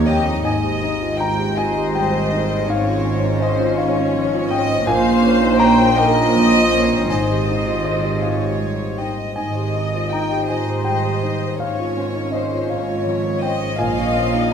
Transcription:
Already playing: D#2 G3 C#4 D#4 G4 A#4 C#5 D#5 F5
0.06 F2 G4 A#4 D#5 G5
0.26 D#4
0.45 G#1 G#2 C5 D#5 G#5
0.64 G4
0.83 D#4
1.01 F4
1.19 D#4 G5 A#5
1.39 G4
1.56 F4 C5 D#5 G#5
1.76 G4
1.93 G3 D#5 G5
2.32 D#4
2.50 C5
2.68 G#2 C#4 C#5 F5
2.86 F4
3.04 C#4
3.22 D#4
3.39 C#4 C5 D#5
3.59 F4
3.77 D#4 C#5 F5
3.96 F4
4.15 F3
4.33 F4
4.50 C#4 D#5 G5
4.68 C5
4.86 A#1 A#2 C5 F5 G#5
5.04 F4
5.22 C#4
5.42 D#4
5.59 C#4 G5 A#5
5.79 F4
5.97 D#4 A#4 D#5 G5
6.17 F4
6.35 F3 D#5
6.56 F4
6.72 C#4
6.92 C5
7.10 G#1 G#2 D#5 G#5
7.31 G4
7.49 D#4
7.67 F4
7.85 D#4 C5 D#5
8.05 G4
8.22 F4 C#5 F5
8.41 G4
8.61 G3
8.81 G4
8.98 D#4 D#5 G5
9.19 C5
9.36 G#1 G#2 D#5 G#5
9.55 G4 C5
9.75 D#4 D#5
9.94 F4 C5
10.11 D#4 D#5 G5 A#5
10.31 G4 C5
10.48 G#1 G#2 F4 C5 D#5 G#5
10.68 G4 C5
10.84 G3 D#5 G5
11.05 G4 C5
11.23 D#4 D#5
11.41 C5
11.60 G#1 G#2 C#4 C5 C#5 F5
11.79 F4 C#5
11.97 C#4 C5
12.15 D#4 C#5
12.32 C#4 C5 D#5
12.52 F4 C#5
12.68 G#1 G#2 D#4 C5 C#5 F5
12.87 F4 C#5
13.05 F3 C5
13.24 F4 C#5
13.41 C#4 C5 D#5 G5
13.60 C5 C#5
13.78 A#1 A#2 C5 D#5 F5 G#5
13.97 F4 C#5
14.15 C#4 C5
14.33 D#4 C#5

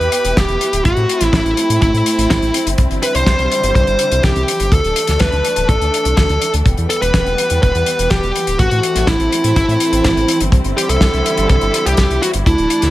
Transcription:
Already playing: B3 E4 G4 B4
0.00 E2, closed hi-hat
0.12 closed hi-hat
0.24 E1, closed hi-hat
0.37 E1 G4, kick, snare, closed hi-hat
0.48 E1, closed hi-hat
0.61 closed hi-hat
0.73 D1, closed hi-hat
0.85 A1 A3 C4 F#4, kick, closed hi-hat
0.97 A2, closed hi-hat
1.09 closed hi-hat
1.21 A1, snare, closed hi-hat
1.33 A1 E4, kick, snare, closed hi-hat
1.45 A1, closed hi-hat
1.57 closed hi-hat
1.70 A2, closed hi-hat
1.82 A1 E4, kick, closed hi-hat
1.94 A2, closed hi-hat
2.06 closed hi-hat
2.18 A1, closed hi-hat
2.30 A1 E4, kick, snare, closed hi-hat
2.42 A1, closed hi-hat
2.54 closed hi-hat
2.66 G1, closed hi-hat
2.78 C2 D3 E3 G3, kick, closed hi-hat
2.91 G1, closed hi-hat
3.03 B4, closed hi-hat
3.15 C2 C5, closed hi-hat
3.26 C2, kick, snare, closed hi-hat
3.39 C2, closed hi-hat
3.52 closed hi-hat
3.63 G1, closed hi-hat
3.75 C2 C5, kick, closed hi-hat
3.87 G1, closed hi-hat
3.99 closed hi-hat
4.12 C2, closed hi-hat
4.23 C2 G4, kick, snare, closed hi-hat
4.36 C2, closed hi-hat
4.48 closed hi-hat
4.60 G1, closed hi-hat
4.72 D2 A3 D4 A4, kick, closed hi-hat
4.84 D1, closed hi-hat
4.96 closed hi-hat
5.07 D2, snare, closed hi-hat
5.19 D2 B4, kick, snare, closed hi-hat
5.32 D2, closed hi-hat
5.45 closed hi-hat
5.56 D1, closed hi-hat
5.69 A1 A4, kick, closed hi-hat
5.81 D2, closed hi-hat
5.94 closed hi-hat
6.05 C2, closed hi-hat
6.17 D2 A4, kick, snare, closed hi-hat
6.29 D2, closed hi-hat
6.42 closed hi-hat
6.54 D2, closed hi-hat
6.66 E1 G3 B3, kick, closed hi-hat
6.77 E2, closed hi-hat
6.90 A4, closed hi-hat
7.02 E1 B4, closed hi-hat
7.14 E1, kick, snare, closed hi-hat
7.26 E1, closed hi-hat
7.38 closed hi-hat
7.50 E2, closed hi-hat
7.62 E1 B4, kick, closed hi-hat
7.75 E2, closed hi-hat
7.86 closed hi-hat
7.99 E1, closed hi-hat
8.10 E1 G4, kick, snare, closed hi-hat
8.23 E1, closed hi-hat
8.36 closed hi-hat
8.47 D1, closed hi-hat
8.59 A1 A3 C4 F#4, kick, closed hi-hat
8.71 A2, closed hi-hat
8.83 closed hi-hat
8.95 A1, snare, closed hi-hat
9.07 A1 E4, kick, snare, closed hi-hat
9.20 A1, closed hi-hat
9.32 closed hi-hat
9.44 A2, closed hi-hat
9.56 A1 E4, kick, closed hi-hat
9.68 A2, closed hi-hat
9.80 closed hi-hat
9.92 A1, closed hi-hat
10.04 A1 E4, kick, snare, closed hi-hat
10.17 A1, closed hi-hat
10.28 closed hi-hat
10.40 G1, closed hi-hat
10.52 C2 D3 G3 E4, kick, closed hi-hat
10.64 G1, closed hi-hat
10.77 G4, closed hi-hat
10.89 C2 A4, closed hi-hat
11.01 C2, kick, snare, closed hi-hat
11.14 C2, closed hi-hat
11.26 closed hi-hat
11.37 G1, closed hi-hat
11.49 C2 A4, kick, closed hi-hat
11.61 G1, closed hi-hat
11.74 closed hi-hat
11.86 C2 G4, closed hi-hat
11.97 C2, kick, snare, closed hi-hat
12.10 C2, closed hi-hat
12.22 F#4, closed hi-hat
12.34 G1, closed hi-hat
12.46 D2 A3 D4 E4, kick, closed hi-hat
12.58 D1, closed hi-hat
12.70 closed hi-hat
12.82 D2, snare, closed hi-hat

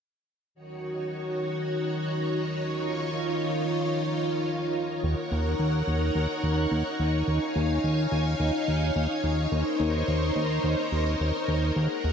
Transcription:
0.54 D#3 D#4 F#4 C#5
2.79 F4
5.03 D#2 D#4 A#4 C#5 F#5
5.32 D#2
5.59 D#2
5.87 D#2
6.15 D#2
6.43 D#2
6.72 D#2
7.00 D#2
7.28 D#2 F5 G#5
7.56 D#2
7.84 D#2
8.12 D#2
8.40 D#2
8.68 D#2
8.96 D#2
9.24 D#2
9.51 D#2 A#4 C5
9.80 D#2
10.08 D#2
10.36 D#2
10.64 D#2
10.92 D#2
11.20 D#2
11.48 D#2
11.76 D#2 G#4 F#5
12.04 D#2

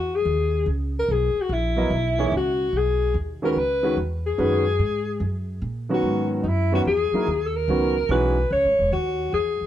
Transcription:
Already playing: E2 F#4
0.15 G#4
0.25 D#2
0.66 C#2
0.99 A#4
1.08 B1 G#4
1.35 muted upright bass stroke
1.41 F#4
1.49 A#1 E4
1.76 F#3 B3 E4 A#4 D#5
1.90 B1
2.19 E3 A#3 D#4 G#4 C#5
2.32 C#2
2.37 F#4
2.73 B1
2.77 G#4
3.14 D#2
3.42 D#3 G#3 C#4 F#4 A#4 B4
3.52 A#4
3.56 C#2 B4
3.83 D#3 G#3 C#4 F#4 B4
3.97 E2
4.26 G#4
4.38 F#2 D#3 G#3 C#4 F#4 B4
4.79 G#2
5.20 F#2
5.62 A#2
5.89 D#3 F#3 B3 C#4 F#4
5.94 F#4
6.02 G#2
6.43 F#2 D#4
6.48 E4
6.72 D#3 F#3 B3 C#4 F#4
6.85 E2 G#4
7.12 F#3 A#3 D#4 E4 A#4, muted upright bass stroke
7.27 D#2
7.46 A4
7.56 A#4
7.68 C#2 D#3 F#3 B3 C#4 F#4
8.09 B1 E3 G#3 C#4 D#4 F#4 B4
8.51 C#2 C#5
8.65 G#1
8.79 E1
8.92 D#2 F#4
9.33 E2 G#4
9.61 muted upright bass stroke

